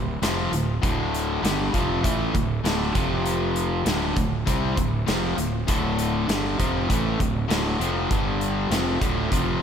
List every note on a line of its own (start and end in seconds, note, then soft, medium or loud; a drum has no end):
0.00 0.20 D1 medium
0.00 0.16 D2 medium
0.00 0.17 A2 medium
0.22 0.50 F1 medium
0.22 0.52 F2 medium
0.22 0.52 C3 medium
0.22 0.52 F3 medium
0.22 snare loud
0.22 closed hi-hat medium
0.52 0.81 D1 medium
0.52 0.77 D2 medium
0.52 0.77 A2 medium
0.52 closed hi-hat medium
0.82 1.40 D1 medium
0.82 1.42 D2 medium
0.82 1.42 A2 medium
0.82 1.41 D3 medium
0.82 kick loud
0.82 closed hi-hat medium
1.15 closed hi-hat medium
1.42 1.72 G1 medium
1.42 1.72 G2 medium
1.42 1.73 D3 medium
1.42 1.73 G3 medium
1.42 snare loud
1.42 closed hi-hat medium
1.73 2.02 F1 medium
1.73 2.03 F2 medium
1.73 2.03 C3 medium
1.73 2.04 F3 medium
1.73 kick medium
1.73 closed hi-hat medium
2.04 2.33 A1 medium
2.04 2.33 A2 medium
2.04 2.34 E3 medium
2.04 2.34 A3 loud
2.04 kick medium
2.04 closed hi-hat medium
2.34 2.63 D1 medium
2.34 2.59 D2 medium
2.34 2.59 A2 medium
2.34 kick medium
2.34 closed hi-hat medium
2.64 2.93 D1 medium
2.64 2.94 D2 medium
2.64 2.94 A2 medium
2.64 2.94 D3 medium
2.64 snare loud
2.64 closed hi-hat medium
2.94 3.82 F1 medium
2.94 3.85 F2 medium
2.94 3.85 C3 medium
2.94 3.85 F3 loud
2.94 kick medium
2.94 closed hi-hat medium
3.26 closed hi-hat medium
3.56 closed hi-hat medium
3.85 4.14 D1 medium
3.85 4.15 D2 medium
3.85 4.15 A2 medium
3.85 4.15 D3 medium
3.85 snare loud
3.85 closed hi-hat medium
4.16 4.45 D1 medium
4.16 4.41 D2 medium
4.16 4.41 A2 medium
4.16 kick medium
4.16 closed hi-hat medium
4.46 4.75 C2 loud
4.46 4.76 C3 medium
4.46 4.76 G3 medium
4.46 4.76 C4 loud
4.46 kick medium
4.46 closed hi-hat medium
4.77 5.06 D1 medium
4.77 5.01 D2 medium
4.77 5.01 A2 medium
4.77 kick medium
4.77 closed hi-hat medium
5.07 5.36 F1 medium
5.07 5.36 F2 medium
5.07 5.37 C3 medium
5.07 5.37 F3 loud
5.07 snare loud
5.07 closed hi-hat medium
5.37 5.66 D1 medium
5.37 5.62 D2 medium
5.37 5.62 A2 medium
5.37 closed hi-hat medium
5.67 6.25 D1 medium
5.67 6.27 D2 medium
5.67 6.28 A2 loud
5.67 6.27 D3 loud
5.67 kick loud
5.67 closed hi-hat medium
5.99 closed hi-hat medium
6.28 6.57 G1 medium
6.28 6.58 G2 medium
6.28 6.58 D3 medium
6.28 6.58 G3 medium
6.28 snare loud
6.28 closed hi-hat medium
6.59 6.88 F1 medium
6.59 6.88 F2 medium
6.59 6.88 C3 medium
6.59 6.89 F3 loud
6.59 kick medium
6.59 closed hi-hat medium
6.88 7.18 A1 loud
6.88 7.18 A2 medium
6.88 7.19 E3 medium
6.88 7.19 A3 medium
6.88 kick medium
6.88 closed hi-hat medium
7.19 7.48 D1 medium
7.19 7.43 D2 medium
7.19 7.44 A2 medium
7.19 kick medium
7.19 closed hi-hat medium
7.48 7.78 D1 medium
7.48 7.78 D2 medium
7.48 7.79 A2 medium
7.48 7.79 D3 medium
7.48 snare loud
7.48 closed hi-hat medium
7.80 8.08 F1 medium
7.80 8.09 F2 medium
7.80 8.10 C3 medium
7.80 8.10 F3 loud
7.80 closed hi-hat medium
8.10 8.67 G1 medium
8.10 8.70 G2 medium
8.10 8.70 D3 medium
8.10 8.70 G3 loud
8.10 kick medium
8.10 closed hi-hat medium
8.41 closed hi-hat medium
8.70 8.99 F1 medium
8.70 9.00 F2 medium
8.70 9.00 C3 medium
8.70 9.01 F3 medium
8.70 snare loud
8.70 closed hi-hat medium
9.00 9.30 D1 medium
9.00 9.30 D2 medium
9.00 9.30 A2 medium
9.00 9.31 D3 loud
9.00 kick medium
9.00 closed hi-hat medium
9.31 9.60 F1 medium
9.31 9.61 F2 medium
9.31 9.61 C3 medium
9.31 9.61 F3 medium
9.31 kick medium
9.31 closed hi-hat medium